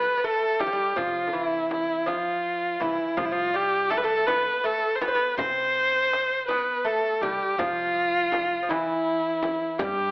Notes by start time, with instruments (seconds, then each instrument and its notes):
Already playing: lute B3, kamancheh B4
0.17 lute B3
0.24 lute A3, kamancheh A4
0.60 lute G3, kamancheh G4, tombak tek, frame drum
0.67 lute F3
0.73 lute G3
0.96 upright bass C3, lute F3, kamancheh F4, tombak dum, frame drum
1.27 lute D3
1.33 lute E3, kamancheh E4, tombak ka
1.71 kamancheh E4, tombak tek, frame drum
2.06 lute F3, kamancheh F4, tombak tek, frame drum
2.80 upright bass C2, lute E3, kamancheh E4, tombak tek, frame drum
3.17 upright bass C2, lute F3, kamancheh F4, frame drum, tombak dum
3.25 kamancheh E4
3.32 lute F3, kamancheh F4
3.54 lute G3, kamancheh G4, tombak ka
3.90 lute A3, kamancheh A4, tombak tek, frame drum
3.97 kamancheh B4
4.04 lute A3, kamancheh A4
4.26 lute B3, kamancheh B4, tombak tek, frame drum
4.64 lute A3, kamancheh A4
4.96 kamancheh C5
5.01 lute B3, kamancheh B4, tombak tek, frame drum
5.08 lute C4
5.15 lute B3
5.37 upright bass C3, lute C4, kamancheh C5, frame drum, tombak dum
5.76 tombak ka
6.13 tombak tek
6.48 lute B3, kamancheh B4, tombak tek, frame drum
6.84 lute A3, kamancheh A4
7.21 upright bass C2, lute G3, kamancheh G4, tombak tek, frame drum
7.58 upright bass C2, lute F3, kamancheh F4, frame drum, tombak dum
7.97 tombak ka
8.32 tombak tek, frame drum
8.63 lute F3
8.69 lute E3, kamancheh E4, tombak tek, frame drum
9.43 tombak tek, frame drum
9.79 upright bass G2, lute G3, kamancheh G4, frame drum, tombak dum